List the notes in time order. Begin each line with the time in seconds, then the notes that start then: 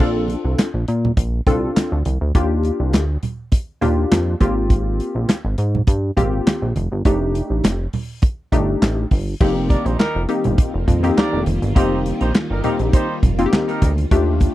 0.00 A#1 C4 D4 F4 A4, kick, crash, muted conga
0.28 closed hi-hat, muted conga
0.45 C2
0.58 snare, clap, closed hi-hat, high conga
0.74 A#1
0.88 A#2, closed hi-hat
1.05 low conga
1.17 A#1, kick, closed hi-hat, muted conga
1.47 C2 C4 D4 F4 A4, kick, closed hi-hat, low conga
1.76 snare, clap, closed hi-hat, high conga
1.92 D2
2.05 C2, closed hi-hat, high conga
2.21 D2
2.35 D#2 A#3 D4 F4 G4, kick, closed hi-hat, muted conga
2.63 closed hi-hat, muted conga
2.80 C2
2.93 D2, snare, clap, closed hi-hat, high conga
3.23 closed hi-hat, low conga
3.52 kick, closed hi-hat, muted conga
3.81 D#2 A#3 D4 F4 G4, closed hi-hat, low conga
4.12 F2, snare, clap, closed hi-hat, high conga
4.40 G#1 A#3 C4 F4 G4, kick, closed hi-hat, high conga
4.70 kick, closed hi-hat, muted conga
5.00 closed hi-hat
5.15 A#1
5.29 snare, clap, closed hi-hat, high conga
5.45 G#1
5.58 G#2, closed hi-hat
5.75 low conga
5.87 G2, kick, closed hi-hat, muted conga
6.17 G#1 A#3 C4 F4 G4, kick, closed hi-hat, low conga
6.47 snare, clap, closed hi-hat, high conga
6.62 A#1
6.76 F1, closed hi-hat, high conga
6.92 G1
7.05 F1 A3 D4 D#4 G4, kick, closed hi-hat, muted conga
7.35 closed hi-hat
7.50 A1
7.64 F1, snare, clap, closed hi-hat, high conga
7.93 open hi-hat, low conga
8.22 kick, closed hi-hat, muted conga
8.52 G1 A3 D4 D#4 G4, kick, closed hi-hat, low conga
8.82 A1, snare, clap, closed hi-hat, high conga
9.11 G1, kick, open hi-hat, high conga
9.40 F1 D#3 G3 A#3 C4 D#4 F4 G4, kick, crash, muted conga
9.69 D4 A#4 D5, kick, closed hi-hat, muted conga
9.85 A#1 G3 D#4 C5, closed hi-hat
9.99 G3 D#4 A#4, snare, clap, high conga
10.15 F1
10.29 A#3 C4 D#4 G4, closed hi-hat
10.44 G1, closed hi-hat, low conga
10.58 kick, closed hi-hat, muted conga
10.74 F1
10.88 F2, kick, closed hi-hat, low conga
11.03 A#3 C4 D#4 G4, closed hi-hat
11.17 D4 A#4 D5, snare, clap, high conga
11.33 F1
11.46 F1, closed hi-hat, high conga
11.62 G1, closed hi-hat
11.75 F1 G3 A#3 C4 D#4 G4 C5, kick, closed hi-hat, muted conga
12.06 closed hi-hat
12.21 A#1 G3 D#4 C5, closed hi-hat
12.35 snare, clap, high conga
12.50 G1 G3 D#4 A#4
12.64 G3 A#3 C4 D#4 G4 A#4, closed hi-hat, low conga
12.79 A#1, closed hi-hat
12.93 G3 D#4 C5, kick, closed hi-hat, muted conga
13.23 F1, kick, closed hi-hat, low conga
13.39 A#3 C4 D#4 F4, closed hi-hat
13.46 G4
13.53 snare, clap, high conga
13.67 G3 D#4 A#4, closed hi-hat
13.82 D2, kick, closed hi-hat, high conga
13.98 closed hi-hat
14.11 D#2 D3 G3 A3 D4 F4 G4, kick, closed hi-hat, muted conga
14.40 kick, closed hi-hat, muted conga